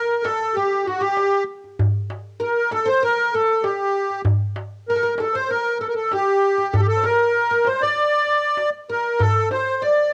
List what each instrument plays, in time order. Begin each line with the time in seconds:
Already playing: oud A#4, accordion A#4
0.09 darbuka ka
0.23 accordion A4, oud A4, darbuka tek
0.41 darbuka ka
0.54 accordion G4, oud G4
0.86 accordion F#4, oud F#4, darbuka ka
1.00 accordion G4, oud G4
1.17 darbuka tek
1.64 darbuka ka
1.79 darbuka dum
2.10 darbuka tek
2.40 oud A#4, accordion A#4
2.71 oud A4, accordion A4, darbuka tek
2.85 oud C5, accordion C5, darbuka ka
3.03 oud A#4, accordion A#4
3.34 accordion A4, oud A4, darbuka ka
3.64 accordion G4, oud G4, darbuka tek
4.10 darbuka ka
4.25 darbuka dum
4.56 darbuka tek
4.89 accordion A#4, oud A#4
4.96 oud A4
5.03 oud A#4, darbuka ka
5.16 oud A4, accordion A#4, darbuka tek
5.21 accordion A4
5.34 accordion C5, oud C5, darbuka ka
5.50 accordion A#4, oud A#4
5.80 accordion A4, oud A4, darbuka ka
5.88 accordion A#4
5.95 accordion A4
6.12 accordion G4, oud G4, darbuka tek
6.58 oud G4, darbuka ka
6.73 oud A4, accordion A4, darbuka dum
6.80 accordion G4
6.87 accordion A4
6.97 oud C5
7.03 oud A#4, accordion A#4, darbuka tek
7.34 darbuka ka
7.51 oud A#4
7.65 accordion C5, oud C5, darbuka tek
7.81 accordion D5, oud D5, darbuka ka
7.96 darbuka ka
8.27 darbuka ka
8.57 darbuka tek
8.89 oud A#4, accordion A#4
9.19 oud A4, accordion A4, darbuka dum
9.51 accordion C5, oud C5, darbuka tek
9.82 oud D5, accordion D5
9.97 darbuka ka